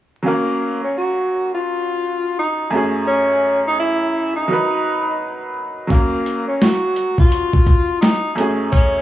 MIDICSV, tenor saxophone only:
0, 0, Header, 1, 2, 480
1, 0, Start_track
1, 0, Key_signature, 6, "major"
1, 0, Tempo, 705882
1, 176, Time_signature, 4, 2, 24, 8
1, 6132, End_track
2, 0, Start_track
2, 0, Title_t, "Tenor saxophone"
2, 0, Program_c, 0, 66
2, 185, Note_on_c, 0, 58, 90
2, 548, Note_off_c, 0, 58, 0
2, 571, Note_on_c, 0, 61, 69
2, 649, Note_off_c, 0, 61, 0
2, 661, Note_on_c, 0, 66, 72
2, 1026, Note_off_c, 0, 66, 0
2, 1049, Note_on_c, 0, 65, 77
2, 1590, Note_off_c, 0, 65, 0
2, 1625, Note_on_c, 0, 63, 78
2, 1837, Note_off_c, 0, 63, 0
2, 2091, Note_on_c, 0, 61, 98
2, 2461, Note_off_c, 0, 61, 0
2, 2497, Note_on_c, 0, 63, 82
2, 2573, Note_off_c, 0, 63, 0
2, 2579, Note_on_c, 0, 64, 89
2, 2945, Note_off_c, 0, 64, 0
2, 2965, Note_on_c, 0, 63, 76
2, 3659, Note_off_c, 0, 63, 0
2, 4022, Note_on_c, 0, 58, 92
2, 4387, Note_off_c, 0, 58, 0
2, 4404, Note_on_c, 0, 61, 70
2, 4485, Note_off_c, 0, 61, 0
2, 4503, Note_on_c, 0, 66, 69
2, 4867, Note_off_c, 0, 66, 0
2, 4891, Note_on_c, 0, 65, 78
2, 5431, Note_off_c, 0, 65, 0
2, 5447, Note_on_c, 0, 63, 82
2, 5667, Note_off_c, 0, 63, 0
2, 5929, Note_on_c, 0, 61, 96
2, 6132, Note_off_c, 0, 61, 0
2, 6132, End_track
0, 0, End_of_file